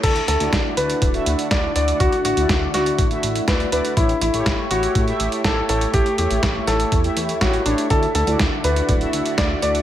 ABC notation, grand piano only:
X:1
M:4/4
L:1/8
Q:1/4=122
K:D
V:1 name="Grand piano"
A A2 B z2 d d | F F2 F z2 B B | E E2 F z2 A A | G G2 A z2 F D |
A A2 B z2 d d |]